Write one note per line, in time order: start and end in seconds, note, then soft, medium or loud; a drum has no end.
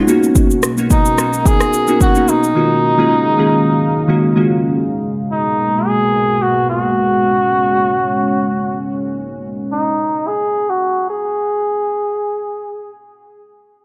0.00 2.52 B2 medium
0.00 2.52 F#4 medium
0.00 0.10 G#4 loud
0.07 0.63 A#3 medium
0.07 0.63 B3 medium
0.07 0.63 C#4 medium
0.07 4.72 D#4 medium
0.07 0.63 D#4 medium
0.07 0.64 F#4 loud
0.07 2.53 A#4 medium
0.07 shaker medium
0.23 shaker soft
0.35 kick loud
0.35 shaker medium
0.51 shaker medium
0.63 cross-stick medium
0.63 shaker medium
0.77 1.10 A#3 medium
0.77 1.10 B3 medium
0.77 1.11 C#4 medium
0.77 1.11 D#4 medium
0.77 1.11 F#4 medium
0.77 shaker medium
0.90 1.48 D#4 medium
0.90 kick medium
0.90 shaker medium
1.05 shaker medium
1.17 1.73 A#3 medium
1.17 1.73 B3 medium
1.17 1.73 C#4 medium
1.17 1.73 D#4 medium
1.17 1.74 F#4 medium
1.17 cross-stick medium
1.17 shaker medium
1.33 shaker medium
1.46 2.01 G#4 loud
1.46 kick loud
1.46 shaker medium
1.60 cross-stick medium
1.60 shaker soft
1.73 shaker medium
1.88 2.09 A#3 medium
1.88 2.10 B3 medium
1.88 2.10 C#4 medium
1.88 2.10 D#4 medium
1.88 2.10 F#4 medium
1.88 shaker medium
2.01 2.31 F#4 loud
2.01 kick loud
2.01 shaker medium
2.15 2.48 A#3 medium
2.15 2.48 B3 medium
2.15 2.48 C#4 medium
2.15 2.49 D#4 medium
2.15 2.49 F#4 medium
2.15 shaker medium
2.28 4.49 D#4 medium
2.28 shaker medium
2.44 shaker soft
2.55 4.74 C#3 medium
2.55 2.89 D#3 medium
2.55 4.74 F#3 medium
2.55 2.89 G#3 medium
2.55 8.85 G#3 medium
2.55 2.89 A#3 medium
2.55 2.89 C#4 medium
2.55 2.90 F4 medium
2.55 2.90 F#4 medium
2.55 4.74 F5 medium
2.98 3.30 D#3 medium
2.98 3.31 G#3 medium
2.98 3.31 A#3 medium
2.98 3.31 C#4 medium
2.98 3.31 F4 medium
2.98 3.31 G#4 loud
3.38 3.93 D#3 medium
3.38 3.93 G#3 medium
3.38 3.93 A#3 medium
3.38 3.94 C#4 medium
3.38 3.94 F4 medium
3.38 3.94 G#4 medium
4.08 4.30 D#3 medium
4.08 4.30 G#3 medium
4.08 4.30 A#3 medium
4.08 4.30 C#4 medium
4.08 4.30 F4 medium
4.08 4.31 F#4 medium
4.35 4.68 D#3 medium
4.35 4.68 G#3 medium
4.35 4.68 A#3 medium
4.35 4.69 C#4 medium
4.35 4.69 F4 medium
4.35 4.69 F#4 medium
4.76 9.12 B2 medium
4.76 6.67 A#3 medium
4.76 9.12 F#4 medium
5.32 5.88 D#4 medium
5.87 6.44 G#4 loud
6.42 6.69 F#4 loud
6.69 8.86 C#4 medium
6.69 8.85 F#4 medium
9.72 10.29 D#4 medium
10.27 10.71 G#4 loud
10.70 11.09 F#4 loud
11.10 12.98 G#4 loud